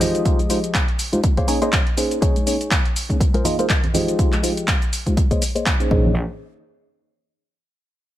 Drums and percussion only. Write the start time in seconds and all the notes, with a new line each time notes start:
0.01 open hi-hat, tambourine, low conga, cabasa
0.15 closed hi-hat, cabasa
0.25 kick, closed hi-hat, cabasa
0.39 closed hi-hat, high conga, cabasa
0.50 open hi-hat, tambourine, cabasa
0.64 closed hi-hat, tambourine, cabasa
0.75 kick, clap, closed hi-hat, cabasa
0.88 closed hi-hat
0.99 open hi-hat, tambourine, cabasa
1.13 closed hi-hat, tambourine, high conga, cabasa
1.24 kick, closed hi-hat, cabasa
1.37 kick, closed hi-hat
1.48 open hi-hat, tambourine, cabasa
1.62 closed hi-hat, cabasa
1.73 kick, clap, closed hi-hat, cabasa
1.87 closed hi-hat
1.97 open hi-hat, cabasa
2.11 closed hi-hat, cabasa
2.22 kick, closed hi-hat, cabasa
2.36 closed hi-hat, high conga, cabasa
2.46 open hi-hat, tambourine, cabasa
2.61 closed hi-hat, tambourine, cabasa
2.71 kick, clap, closed hi-hat, cabasa
2.85 closed hi-hat
2.96 open hi-hat, cabasa
3.10 kick, closed hi-hat, tambourine, high conga, cabasa
3.20 kick, closed hi-hat, tambourine, cabasa
3.34 closed hi-hat
3.45 open hi-hat, tambourine, low conga, cabasa
3.59 closed hi-hat, tambourine, cabasa
3.70 kick, clap, closed hi-hat, cabasa
3.84 closed hi-hat, low conga
3.94 open hi-hat, tambourine, low conga, cabasa
4.08 closed hi-hat, cabasa
4.19 kick, closed hi-hat, cabasa
4.32 clap, closed hi-hat, high conga, cabasa
4.44 open hi-hat, cabasa
4.57 closed hi-hat, tambourine, cabasa
4.68 kick, clap, closed hi-hat, cabasa
4.82 closed hi-hat, cabasa
4.93 open hi-hat, tambourine, cabasa
5.06 kick, closed hi-hat, tambourine, high conga, cabasa
5.17 kick, closed hi-hat, cabasa
5.31 kick, closed hi-hat, cabasa
5.42 open hi-hat, cabasa
5.56 closed hi-hat, cabasa
5.66 kick, clap, closed hi-hat, cabasa
5.80 closed hi-hat, cabasa
5.91 kick
6.05 tambourine, low conga